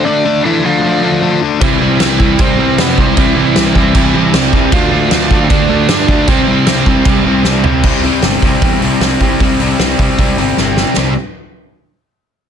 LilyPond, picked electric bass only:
\new Staff \with { instrumentName = "Picked electric bass" } { \clef bass \time 4/4 \key c \major \tempo 4 = 154 r1 | c,8 c,8 c,8 c,8 c,8 c,8 f,8 c,8 | c,8 c,8 c,8 c,8 c,8 c,8 c,8 c,8 | d,8 d,8 d,8 d,8 d,8 d,8 g,8 d,8 |
c,8 c,8 c,8 c,8 c,8 c,8 c,8 c,8 | c,4 g,,8 c,8 e,8 c,8 c,8 c,8 | c,8 c,8 c,8 c,8 c,8 g,,8 g,,4 | c,8 r2. r8 | }